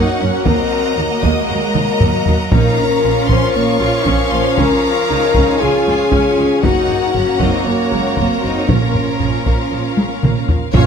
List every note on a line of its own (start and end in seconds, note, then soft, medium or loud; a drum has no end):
0.00 2.36 F#3 medium
0.00 0.19 A#3 medium
0.00 2.36 A#3 medium
0.00 0.43 C#4 medium
0.00 0.20 D#4 medium
0.00 0.45 F#4 medium
0.00 2.53 F#4 medium
0.00 2.50 A#4 soft
0.00 4.59 A#4 medium
0.00 0.43 C#5 soft
0.00 0.43 C#5 medium
0.00 0.46 F#5 medium
0.00 2.52 F#5 medium
0.21 0.29 F#2 soft
0.21 0.29 F#3 soft
0.21 0.47 C#4 medium
0.46 0.54 D#2 medium
0.46 0.70 A#3 medium
0.46 2.53 A#3 medium
0.46 0.97 C4 medium
0.46 1.24 A#4 loud
0.46 2.52 D#5 medium
0.46 2.53 D#5 medium
0.46 1.22 A#5 medium
0.46 taiko medium
0.97 1.05 D#2 medium
0.97 1.07 D#3 medium
0.97 1.23 A#3 medium
1.22 1.31 D#2 medium
1.22 2.00 G#3 medium
1.22 1.47 A#3 medium
1.22 1.49 D#5 medium
1.22 1.49 D#6 medium
1.22 taiko medium
1.47 1.57 D#2 medium
1.47 1.58 F#3 medium
1.47 2.35 A#4 medium
1.47 2.49 A#5 medium
1.75 1.83 D#2 medium
1.75 1.83 D#3 medium
1.75 taiko mid medium
2.00 2.09 D#2 medium
2.00 2.52 F#3 medium
2.00 2.24 A#3 medium
2.00 taiko low-mid medium
2.26 2.35 D#2 medium
2.26 2.34 F#3 soft
2.26 taiko low medium
2.50 2.60 A#1 medium
2.50 3.25 A#2 medium
2.50 6.60 F3 medium
2.50 2.76 C#4 medium
2.50 6.64 C#4 medium
2.50 6.60 C#4 medium
2.50 2.77 D#4 medium
2.50 4.58 F4 medium
2.50 4.53 A#4 medium
2.50 3.28 A#4 loud
2.50 6.62 C#5 medium
2.50 6.59 F5 medium
2.50 6.64 F5 medium
2.50 3.27 A#5 medium
2.50 taiko loud
2.77 3.55 C#4 medium
3.03 3.12 A#1 medium
3.03 3.11 F3 soft
3.28 3.37 A#1 medium
3.28 3.54 C#4 medium
3.28 3.56 C5 medium
3.28 3.54 C6 medium
3.28 taiko medium
3.54 3.63 A#1 medium
3.54 3.81 A#3 medium
3.54 3.63 A#3 medium
3.54 4.33 C#5 medium
3.54 4.30 C#6 medium
3.80 3.89 A#1 soft
3.80 3.88 F3 medium
3.80 4.06 F4 medium
4.06 4.14 A#1 medium
4.06 4.30 C#4 medium
4.06 5.09 C#4 medium
4.06 taiko medium
4.31 4.40 A#1 medium
4.31 4.41 A#3 medium
4.31 4.58 C5 medium
4.31 4.57 C6 medium
4.56 4.66 C#2 medium
4.56 4.82 C#4 medium
4.56 6.59 F4 medium
4.56 6.64 G#4 medium
4.56 5.60 A#4 loud
4.56 5.58 A#5 loud
4.56 taiko medium
5.10 5.18 C#2 medium
5.10 5.18 F3 medium
5.10 5.61 D#4 medium
5.34 5.43 C#2 medium
5.34 5.59 C#4 medium
5.34 taiko medium
5.61 5.69 C#2 medium
5.61 5.70 G#3 medium
5.61 5.86 F4 medium
5.61 6.64 G#4 medium
5.61 6.64 G#5 medium
5.87 5.95 C#2 soft
5.87 5.95 F3 medium
5.87 6.12 F4 medium
6.11 6.20 C#2 medium
6.11 6.35 C#4 medium
6.11 6.63 C#4 medium
6.11 taiko medium
6.37 6.45 C#2 soft
6.37 6.46 G#3 medium
6.63 6.72 F#1 medium
6.63 8.65 F#3 medium
6.63 10.74 A#3 medium
6.63 6.88 A#3 medium
6.63 8.69 A#3 medium
6.63 7.15 D#4 medium
6.63 7.40 F#4 medium
6.63 8.69 F#4 medium
6.63 10.73 A#4 medium
6.63 10.50 C#5 medium
6.63 8.69 F#5 medium
6.63 7.39 F#5 medium
6.63 10.50 A#5 medium
6.63 taiko loud
6.89 taiko low-mid soft
7.14 7.23 F#1 soft
7.14 7.22 C#3 soft
7.14 7.40 C#4 medium
7.14 taiko low-mid medium
7.39 7.48 F#1 medium
7.39 7.64 A#3 medium
7.39 7.66 C4 medium
7.39 7.66 D#4 medium
7.39 7.66 D#5 medium
7.39 taiko medium
7.65 7.75 F#1 soft
7.65 7.73 F#3 soft
7.65 7.92 A#3 medium
7.65 8.17 C#4 medium
7.65 8.18 C#5 medium
7.91 8.01 F#1 soft
7.91 7.99 C#3 soft
7.91 8.18 G#3 soft
8.16 8.26 F#1 medium
8.16 8.41 A#3 medium
8.16 8.43 A#3 soft
8.16 8.69 C4 medium
8.16 8.68 C5 medium
8.16 taiko medium
8.43 8.51 F#1 soft
8.43 8.51 F#3 soft
8.43 8.69 D#4 medium
8.68 8.77 A#1 soft
8.68 9.42 A#2 medium
8.68 10.46 F3 soft
8.68 8.93 A#3 medium
8.68 10.24 A#3 medium
8.68 10.45 C#4 soft
8.68 10.49 C#4 soft
8.68 10.54 F4 soft
8.68 10.20 A#4 medium
8.68 10.72 F5 medium
8.68 taiko medium
8.95 taiko low-mid soft
9.20 9.29 A#1 soft
9.20 9.29 C#3 soft
9.20 taiko low-mid medium
9.46 9.54 A#1 medium
9.46 9.70 A#3 medium
9.46 taiko medium
9.72 9.80 A#1 soft
9.72 9.80 F3 soft
9.97 10.07 A#1 soft
9.97 10.06 C#3 soft
9.97 taiko high medium
10.23 10.31 A#1 soft
10.23 10.47 A#3 medium
10.23 taiko mid medium
10.48 10.57 A#1 soft
10.48 10.56 F3 soft
10.48 taiko low medium
10.73 10.83 A#1 medium
10.73 10.83 A#2 medium
10.73 10.86 A#2 loud
10.73 10.86 C#3 medium
10.73 10.86 F3 medium
10.73 10.86 C#4 medium
10.73 10.86 F4 medium
10.73 10.86 A#4 medium
10.73 10.86 C#5 loud
10.73 10.86 C#5 medium
10.73 10.86 F5 medium
10.73 taiko loud
10.73 sub drop medium